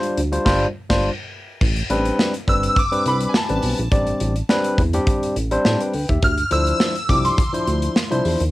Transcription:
0.00 0.20 G3 medium
0.00 0.20 D4 medium
0.00 0.20 F4 medium
0.00 0.20 C5 loud
0.00 closed hi-hat medium
0.17 0.39 D2 loud
0.17 closed hi-hat medium
0.32 0.44 G3 medium
0.32 0.44 D4 medium
0.32 0.45 F4 medium
0.32 0.45 C5 medium
0.32 closed hi-hat medium
0.45 0.66 G1 loud
0.45 0.65 G3 loud
0.45 0.66 D4 medium
0.45 0.66 F4 loud
0.45 0.66 C5 loud
0.45 kick loud
0.45 snare loud
0.45 crash medium
0.90 1.09 G1 loud
0.90 1.09 G3 medium
0.90 1.09 D4 medium
0.90 1.09 F4 medium
0.90 1.09 C5 medium
0.90 kick loud
0.90 snare loud
0.90 crash medium
1.61 1.83 A1 loud
1.61 kick loud
1.61 crash medium
1.76 closed hi-hat medium
1.90 2.12 A1 loud
1.90 2.33 G3 loud
1.90 2.33 C4 loud
1.90 2.33 D4 medium
1.90 2.33 B4 loud
1.90 closed hi-hat medium
2.05 closed hi-hat medium
2.19 snare loud
2.34 closed hi-hat medium
2.47 2.69 G1 medium
2.47 2.79 G3 medium
2.47 2.79 C4 medium
2.47 2.79 D4 medium
2.47 2.80 B4 medium
2.47 2.78 E6 loud
2.47 kick medium
2.47 closed hi-hat medium
2.63 closed hi-hat medium
2.76 3.07 D6 loud
2.76 kick loud
2.76 closed hi-hat medium
2.92 3.33 G3 medium
2.92 3.33 C4 medium
2.92 3.33 D4 medium
2.92 3.33 B4 medium
2.92 closed hi-hat medium
3.06 3.27 C2 medium
3.06 3.17 B5 medium
3.06 closed hi-hat medium
3.21 closed hi-hat medium
3.29 3.35 G#5 medium
3.34 3.77 A5 medium
3.34 snare loud
3.49 3.60 A1 medium
3.49 3.81 G3 medium
3.49 3.81 C4 medium
3.49 3.81 D4 medium
3.49 3.81 B4 medium
3.49 closed hi-hat soft
3.63 3.75 B1 medium
3.63 open hi-hat medium
3.78 3.89 A#1 medium
3.78 closed hi-hat medium
3.92 4.14 A1 loud
3.92 4.34 G3 medium
3.92 4.35 C4 medium
3.92 4.35 D4 medium
3.92 4.35 D5 loud
3.92 kick loud
3.92 closed hi-hat medium
4.07 closed hi-hat soft
4.20 4.43 A1 loud
4.20 closed hi-hat medium
4.36 closed hi-hat soft
4.49 4.81 G3 loud
4.49 4.81 C4 medium
4.49 4.81 D4 medium
4.49 4.81 B4 loud
4.49 snare loud
4.64 closed hi-hat medium
4.78 5.00 E2 loud
4.78 kick medium
4.78 closed hi-hat medium
4.93 5.35 G3 loud
4.93 5.35 C4 medium
4.93 5.35 D4 medium
4.93 5.35 G4 loud
4.93 closed hi-hat medium
5.07 kick loud
5.07 closed hi-hat medium
5.23 closed hi-hat medium
5.36 5.58 A1 loud
5.36 closed hi-hat medium
5.51 5.92 G3 loud
5.51 5.93 C4 medium
5.51 5.93 D4 medium
5.51 5.65 C5 loud
5.51 closed hi-hat medium
5.65 5.77 A2 loud
5.65 5.80 C5 medium
5.65 5.80 A5 medium
5.65 snare loud
5.80 6.08 B4 medium
5.80 6.08 G5 medium
5.80 closed hi-hat medium
5.93 6.06 D2 medium
5.93 open hi-hat medium
6.09 6.19 D#2 medium
6.09 6.37 G4 medium
6.09 6.37 E5 medium
6.09 kick medium
6.09 closed hi-hat medium
6.22 6.44 D2 loud
6.22 6.53 F6 loud
6.22 kick loud
6.22 closed hi-hat medium
6.38 closed hi-hat medium
6.51 6.73 D2 loud
6.51 6.94 F3 medium
6.51 6.94 D4 medium
6.51 6.94 E4 medium
6.51 6.94 C5 medium
6.51 7.11 E6 loud
6.51 closed hi-hat medium
6.67 closed hi-hat soft
6.80 snare loud
6.95 closed hi-hat medium
7.09 7.31 C2 loud
7.09 7.41 F3 medium
7.09 7.41 D4 medium
7.09 7.41 E4 medium
7.09 7.41 G4 medium
7.09 7.23 D6 loud
7.09 kick medium
7.09 closed hi-hat medium
7.25 8.21 C6 medium
7.25 closed hi-hat medium
7.38 kick loud
7.38 closed hi-hat medium
7.53 7.94 F3 medium
7.53 7.95 D4 medium
7.53 7.95 E4 medium
7.53 7.95 C5 medium
7.53 closed hi-hat medium
7.67 7.89 D2 medium
7.67 closed hi-hat medium
7.82 closed hi-hat medium
7.96 snare loud
8.11 8.22 C2 medium
8.11 8.42 F3 medium
8.11 8.42 D4 medium
8.11 8.42 E4 medium
8.11 8.43 C5 loud
8.11 closed hi-hat medium
8.25 8.36 E2 medium
8.25 open hi-hat medium
8.40 8.50 D#2 medium
8.40 closed hi-hat medium

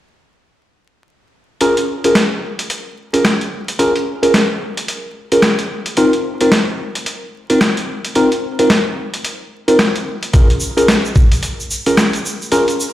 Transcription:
1.61 1.74 C#4 medium
1.61 1.74 F4 medium
1.61 1.74 G#4 medium
1.61 1.74 A#4 medium
1.61 closed hi-hat medium
1.77 closed hi-hat soft
2.04 2.13 C#4 medium
2.04 2.14 F4 medium
2.04 2.14 G#4 medium
2.04 2.13 A#4 medium
2.04 closed hi-hat soft
2.15 snare loud
2.15 closed hi-hat medium
2.59 closed hi-hat medium
2.70 closed hi-hat medium
3.13 3.23 C#4 medium
3.13 3.23 F4 medium
3.13 3.23 G#4 medium
3.13 3.23 A#4 medium
3.13 closed hi-hat soft
3.25 snare loud
3.25 closed hi-hat medium
3.41 closed hi-hat soft
3.68 closed hi-hat soft
3.79 3.92 C#4 medium
3.79 3.92 F4 medium
3.79 3.93 G#4 medium
3.79 3.92 A#4 medium
3.79 closed hi-hat medium
3.96 closed hi-hat soft
4.23 4.32 C#4 medium
4.23 4.32 F4 medium
4.23 4.32 G#4 medium
4.23 4.32 A#4 medium
4.23 closed hi-hat soft
4.34 snare loud
4.34 closed hi-hat medium
4.77 closed hi-hat medium
4.88 closed hi-hat medium
5.32 5.41 C#4 medium
5.32 5.41 F4 medium
5.32 5.41 G#4 medium
5.32 5.41 A#4 medium
5.32 closed hi-hat soft
5.42 snare loud
5.42 closed hi-hat medium
5.59 closed hi-hat soft
5.86 closed hi-hat soft
5.97 6.11 C4 medium
5.97 6.11 D#4 medium
5.97 6.11 F4 medium
5.97 6.11 A#4 medium
5.97 closed hi-hat medium
6.13 closed hi-hat soft
6.41 6.50 C4 medium
6.41 6.50 D#4 medium
6.41 6.50 F4 medium
6.41 6.50 A#4 medium
6.41 closed hi-hat medium
6.52 snare loud
6.52 closed hi-hat medium
6.95 closed hi-hat soft
7.06 closed hi-hat medium
7.50 7.59 C4 medium
7.50 7.59 D#4 medium
7.50 7.59 F4 medium
7.50 7.59 A#4 medium
7.50 closed hi-hat soft
7.61 snare loud
7.61 closed hi-hat medium
7.77 closed hi-hat soft
8.05 closed hi-hat soft
8.15 8.29 C4 medium
8.15 8.29 D#4 medium
8.15 8.29 F4 medium
8.15 8.29 A#4 medium
8.15 closed hi-hat medium
8.32 closed hi-hat soft
8.59 8.68 C4 medium
8.59 8.68 D#4 medium
8.59 8.68 F4 medium
8.59 8.68 A#4 medium
8.59 closed hi-hat soft
8.70 snare loud
8.70 closed hi-hat medium
9.14 closed hi-hat soft
9.25 closed hi-hat medium
9.68 9.77 C4 medium
9.68 9.77 D#4 medium
9.68 9.77 F4 medium
9.68 9.77 A#4 medium
9.68 closed hi-hat soft
9.79 snare loud
9.79 closed hi-hat medium
9.96 closed hi-hat soft
10.23 closed hi-hat soft
10.33 10.47 C#4 medium
10.33 10.47 F4 medium
10.33 10.47 G#4 medium
10.33 10.47 A#4 medium
10.33 kick loud
10.33 closed hi-hat medium
10.33 shaker medium
10.50 closed hi-hat soft
10.60 shaker medium
10.77 10.86 C#4 medium
10.77 10.86 F4 medium
10.77 10.86 G#4 medium
10.77 10.86 A#4 medium
10.77 closed hi-hat soft
10.77 shaker soft
10.88 snare loud
10.88 closed hi-hat medium
10.88 shaker soft
11.05 shaker soft
11.16 kick loud
11.16 shaker medium
11.32 closed hi-hat soft
11.32 shaker soft
11.43 closed hi-hat medium
11.43 shaker soft
11.60 shaker soft
11.71 shaker medium
11.86 11.95 C#4 medium
11.86 11.95 F4 medium
11.86 11.95 G#4 medium
11.86 11.95 A#4 medium
11.86 closed hi-hat soft
11.86 shaker soft
11.97 snare loud
11.97 closed hi-hat medium
11.97 shaker soft
12.13 closed hi-hat soft
12.13 shaker soft
12.25 shaker medium
12.42 shaker soft
12.52 12.65 C#4 medium
12.52 12.65 F4 medium
12.52 12.65 G#4 medium
12.52 12.65 A#4 medium
12.52 closed hi-hat medium
12.52 shaker soft
12.68 closed hi-hat soft
12.68 shaker soft
12.80 shaker medium

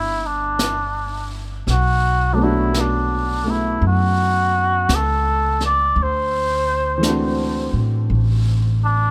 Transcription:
0.00 1.63 G1 medium
0.00 1.67 G3 soft
0.00 1.67 A#3 soft
0.00 1.68 C4 soft
0.00 0.27 E4 medium
0.00 1.68 E4 soft
0.00 1.68 F#5 soft
0.26 1.32 D4 medium
0.59 brush sweep soft
0.59 snare soft
0.59 hi-hat pedal medium
1.67 3.77 B1 medium
1.67 2.35 F#4 medium
1.67 brush sweep soft
1.67 snare soft
2.33 5.94 F#3 medium
2.33 3.43 A3 soft
2.33 2.45 D4 soft
2.38 3.45 B3 soft
2.38 5.98 D4 soft
2.43 2.82 E4 medium
2.43 5.99 F#4 medium
2.74 brush sweep soft
2.74 snare soft
2.74 hi-hat pedal soft
2.80 3.51 D4 medium
3.44 5.95 A3 soft
3.44 5.96 B3 soft
3.44 5.97 E4 soft
3.50 3.84 E4 medium
3.82 4.85 F#2 medium
3.82 brush sweep soft
3.87 4.96 F#4 medium
4.89 5.92 C#2 medium
4.89 brush sweep soft
4.89 snare soft
4.89 hi-hat pedal soft
4.95 5.62 A4 medium
5.61 snare soft
5.66 6.04 D5 medium
5.96 7.69 D2 medium
5.96 brush sweep soft
6.03 7.76 C5 medium
6.98 9.11 E3 soft
6.98 9.11 A3 soft
7.03 9.11 C4 soft
7.03 9.11 D4 soft
7.03 brush sweep soft
7.03 snare soft
7.03 hi-hat pedal soft
7.09 9.11 F#4 soft
7.73 8.07 A2 medium
8.10 9.11 A1 medium
8.10 brush sweep soft
8.84 9.11 D4 medium

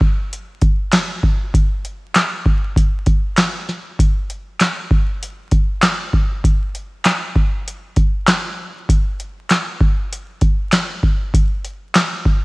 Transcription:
0.01 kick loud
0.33 closed hi-hat medium
0.61 kick loud
0.61 closed hi-hat medium
0.92 snare loud
0.92 clap medium
0.92 closed hi-hat medium
1.23 kick medium
1.54 kick loud
1.54 closed hi-hat medium
1.85 closed hi-hat medium
2.15 snare loud
2.15 clap loud
2.15 closed hi-hat medium
2.46 kick loud
2.76 kick loud
2.76 closed hi-hat medium
3.06 kick medium
3.06 closed hi-hat medium
3.37 snare loud
3.37 clap medium
3.37 closed hi-hat medium
3.69 snare soft
3.99 kick loud
3.99 closed hi-hat medium
4.30 closed hi-hat medium
4.60 snare loud
4.60 clap loud
4.60 closed hi-hat medium
4.91 kick loud
5.23 closed hi-hat medium
5.51 kick medium
5.51 closed hi-hat medium
5.82 snare loud
5.82 clap medium
5.82 closed hi-hat medium
6.13 kick medium
6.44 kick loud
6.44 closed hi-hat loud
6.75 closed hi-hat medium
7.05 snare loud
7.05 clap loud
7.05 closed hi-hat medium
7.36 kick loud
7.68 closed hi-hat medium
7.96 kick medium
7.96 closed hi-hat medium
8.27 snare loud
8.27 clap medium
8.27 closed hi-hat medium
8.89 kick loud
8.89 closed hi-hat medium
9.20 closed hi-hat medium
9.50 snare loud
9.50 clap medium
9.50 closed hi-hat medium
9.81 kick loud
10.13 closed hi-hat medium
10.41 kick medium
10.41 closed hi-hat medium
10.72 snare loud
10.72 clap loud
10.72 closed hi-hat medium
11.03 kick medium
11.34 kick loud
11.34 closed hi-hat loud
11.65 closed hi-hat medium
11.95 snare loud
11.95 clap loud
11.95 closed hi-hat medium
12.25 kick loud

